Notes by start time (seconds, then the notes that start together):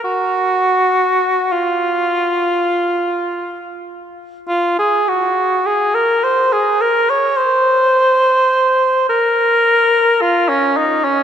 0.04 F#4
1.52 F4
4.48 F4
4.79 G#4
5.08 F#4
5.66 G#4
5.95 A#4
6.24 C5
6.52 G#4
6.81 A#4
7.10 C#5
7.37 C5
9.09 A#4
10.21 F4
10.49 C#4
10.77 D#4
11.04 C#4